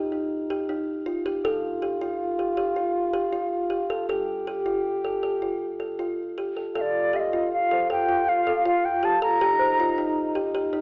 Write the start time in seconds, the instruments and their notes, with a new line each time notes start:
Already playing: upright bass G2, french horn D#4
0.12 kalimba D#4
0.50 kalimba G4
0.69 kalimba D#4
1.06 kalimba F4
1.26 kalimba G4
1.44 upright bass G2, french horn F4, celesta A4, kalimba A4
1.82 kalimba G4
2.01 kalimba F4
2.39 kalimba G4
2.57 kalimba G4
2.76 kalimba F4
3.13 kalimba G4
3.33 kalimba F4
3.70 kalimba G4
3.90 kalimba A4
4.09 upright bass G2, french horn G4, kalimba A4
4.47 kalimba G4
4.66 kalimba F4
5.04 kalimba A4
5.23 kalimba A4
5.42 kalimba F4
5.80 kalimba A4
5.99 kalimba F4
6.38 kalimba G4
6.57 kalimba A4
6.75 upright bass G2, french horn F4, kalimba A4, flute F5
6.81 flute D5
7.13 kalimba G4, flute F5
7.19 flute D#5
7.33 kalimba F4
7.53 flute F5
7.71 kalimba A4, celesta C5
7.90 kalimba A4, flute G5
8.09 kalimba F4
8.29 flute F5
8.47 kalimba A4, celesta A4
8.65 kalimba F4, flute F5
8.85 flute G5
9.03 kalimba G4, flute A5
9.22 kalimba A4, flute A#5
9.41 upright bass G2, french horn D#4, kalimba G4
9.59 celesta C5
9.80 kalimba F4
9.98 kalimba D#4
10.35 kalimba G4
10.55 kalimba G4
10.73 kalimba D#4